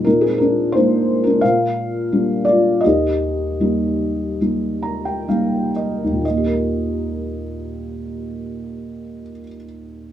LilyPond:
<<
  \new Staff \with { instrumentName = "Felt piano" } { \time 4/4 \key ees \major \tempo 4 = 73 << { r1 | r2 r8 bes''16 g''16 f''8 ees''8 | r1 | } \\ { <ees' bes'>16 <c' aes'>16 <d' bes'>8 <ees' c''>8. <d' bes'>16 <bes' f''>4. <f' d''>8 | <g' ees''>2.~ <g' ees''>8 r8 | ees''1 | } >> }
  \new Staff \with { instrumentName = "Felt piano" } { \time 4/4 \key ees \major bes,4 <aes bes>4 bes,4 <g bes d'>4 | ees,4 <g bes ees'>4 <g bes ees'>4 <g bes ees'>4 | <ees, bes, ees bes g' bes'>1 | }
>>